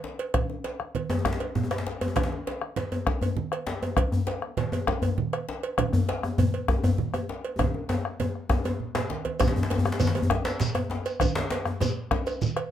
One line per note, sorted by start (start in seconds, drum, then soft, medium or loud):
0.04 djembe slap medium
0.19 cowbell medium
0.34 bombo rim medium
0.34 bombo low medium
0.34 cowbell medium
0.34 high conga medium
0.34 djembe bass medium
0.34 low conga medium
0.50 djembe slap soft
0.50 djembe tone medium
0.64 cowbell medium
0.64 djembe slap medium
0.64 high conga soft
0.80 bombo rim medium
0.80 djembe slap soft
0.80 high conga soft
0.95 cowbell soft
0.95 djembe slap soft
0.95 high conga medium
0.95 low conga medium
1.10 cowbell soft
1.10 djembe tone loud
1.17 djembe tone medium
1.25 bombo rim medium
1.25 bombo low medium
1.25 djembe slap medium
1.25 djembe bass medium
1.33 djembe slap medium
1.40 bombo rim soft
1.40 cowbell soft
1.40 djembe slap soft
1.40 high conga soft
1.40 djembe tone soft
1.55 bombo rim soft
1.55 djembe tone medium
1.55 low conga medium
1.63 djembe tone medium
1.71 bombo rim medium
1.71 cowbell soft
1.71 djembe slap medium
1.71 djembe slap soft
1.71 high conga soft
1.78 djembe slap medium
1.87 djembe slap medium
2.01 bombo rim soft
2.01 cowbell soft
2.01 djembe tone medium
2.08 djembe tone medium
2.16 bombo rim medium
2.16 bombo low medium
2.16 cowbell medium
2.16 djembe slap medium
2.16 high conga medium
2.16 low conga medium
2.16 djembe bass medium
2.23 djembe slap medium
2.32 bombo rim soft
2.32 djembe tone soft
2.47 cowbell soft
2.47 djembe slap medium
2.61 bombo rim medium
2.61 high conga soft
2.76 bombo rim soft
2.76 cowbell soft
2.76 djembe slap medium
2.76 high conga medium
2.76 low conga medium
2.92 cowbell soft
2.92 djembe tone medium
3.07 bombo rim medium
3.07 bombo low medium
3.07 djembe slap medium
3.07 djembe bass medium
3.21 cowbell soft
3.21 djembe tone medium
3.21 djembe bass medium
3.36 djembe slap soft
3.36 high conga medium
3.36 low conga medium
3.52 bombo rim medium
3.52 cowbell medium
3.67 djembe slap medium
3.82 cowbell soft
3.82 djembe tone medium
3.97 bombo rim medium
3.97 bombo low loud
3.97 cowbell medium
3.97 high conga medium
3.97 low conga medium
3.97 djembe bass medium
4.12 bombo rim soft
4.12 djembe tone medium
4.12 djembe bass medium
4.27 cowbell soft
4.27 djembe slap medium
4.42 bombo rim medium
4.42 high conga soft
4.57 bombo rim soft
4.57 cowbell soft
4.57 djembe slap medium
4.57 high conga medium
4.57 low conga medium
4.72 cowbell soft
4.72 djembe tone medium
4.87 bombo rim medium
4.87 bombo low medium
4.87 djembe slap medium
4.87 djembe bass medium
5.02 cowbell soft
5.02 djembe tone medium
5.02 djembe bass medium
5.18 djembe slap soft
5.18 high conga medium
5.18 low conga medium
5.33 bombo rim medium
5.33 cowbell soft
5.49 djembe slap medium
5.63 cowbell medium
5.78 bombo rim medium
5.78 bombo low medium
5.78 cowbell medium
5.78 high conga medium
5.78 low conga medium
5.78 djembe bass medium
5.93 bombo rim soft
5.93 djembe tone medium
5.93 djembe bass medium
6.09 cowbell soft
6.09 djembe slap medium
6.23 bombo rim medium
6.23 high conga soft
6.23 djembe tone medium
6.38 bombo rim soft
6.38 cowbell soft
6.38 high conga medium
6.38 djembe bass medium
6.38 low conga medium
6.54 cowbell soft
6.68 bombo rim medium
6.68 bombo low medium
6.68 djembe slap medium
6.68 djembe tone medium
6.68 djembe bass medium
6.84 cowbell soft
6.84 djembe tone medium
6.84 djembe bass loud
6.98 djembe slap soft
6.98 high conga medium
6.98 low conga medium
7.14 bombo rim medium
7.14 cowbell soft
7.14 djembe tone medium
7.29 djembe slap medium
7.45 cowbell soft
7.59 bombo rim medium
7.59 bombo low medium
7.59 cowbell soft
7.59 djembe tone loud
7.59 high conga medium
7.59 low conga medium
7.59 djembe bass medium
7.74 djembe tone medium
7.74 high conga soft
7.89 cowbell soft
7.89 djembe slap medium
7.89 djembe tone loud
7.89 high conga soft
8.05 bombo rim medium
8.20 cowbell soft
8.20 high conga medium
8.20 djembe tone medium
8.20 low conga medium
8.35 bombo rim soft
8.49 bombo rim medium
8.49 bombo low medium
8.49 djembe slap medium
8.49 djembe tone medium
8.49 djembe bass medium
8.64 cowbell soft
8.64 djembe slap soft
8.64 djembe tone medium
8.64 high conga soft
8.64 djembe tone medium
8.80 low conga soft
8.95 bombo rim medium
8.95 cowbell soft
8.95 djembe slap medium
8.95 low conga soft
9.10 djembe slap medium
9.10 high conga soft
9.25 cowbell medium
9.25 djembe slap soft
9.25 high conga medium
9.40 bombo rim loud
9.40 bombo low loud
9.40 cowbell medium
9.40 high conga medium
9.40 djembe tone loud
9.40 low conga medium
9.40 djembe bass medium
9.40 shekere medium
9.48 djembe slap medium
9.56 djembe tone medium
9.56 djembe bass medium
9.63 djembe slap medium
9.70 cowbell medium
9.70 djembe slap medium
9.70 djembe tone medium
9.78 djembe bass medium
9.85 bombo rim medium
9.85 djembe tone loud
9.85 high conga soft
9.92 djembe slap medium
10.00 bombo rim soft
10.00 cowbell medium
10.00 high conga medium
10.00 djembe bass medium
10.00 low conga medium
10.00 shekere medium
10.07 djembe slap medium
10.15 cowbell medium
10.15 djembe tone medium
10.22 djembe bass medium
10.30 bombo rim loud
10.30 bombo low medium
10.30 djembe slap medium
10.30 djembe bass medium
10.45 cowbell medium
10.45 djembe slap medium
10.45 djembe tone medium
10.45 shekere soft
10.60 djembe slap medium
10.60 high conga medium
10.60 low conga medium
10.60 shekere medium
10.61 djembe slap soft
10.75 bombo rim medium
10.75 cowbell medium
10.75 djembe tone medium
10.90 djembe slap medium
10.90 djembe tone medium
11.06 cowbell medium
11.06 shekere soft
11.20 bombo rim medium
11.20 bombo low medium
11.20 cowbell medium
11.20 high conga medium
11.20 low conga medium
11.20 djembe bass medium
11.20 shekere medium
11.35 djembe slap loud
11.35 djembe tone medium
11.50 cowbell medium
11.50 djembe slap medium
11.65 bombo rim medium
11.65 djembe tone medium
11.65 high conga soft
11.80 bombo rim soft
11.80 cowbell medium
11.80 djembe tone medium
11.80 high conga medium
11.80 low conga medium
11.80 shekere medium
12.11 bombo rim medium
12.11 bombo low medium
12.11 djembe slap medium
12.11 djembe bass medium
12.26 cowbell medium
12.26 djembe tone medium
12.26 shekere soft
12.41 djembe slap soft
12.41 high conga medium
12.41 low conga medium
12.41 shekere medium
12.56 bombo rim medium
12.56 cowbell medium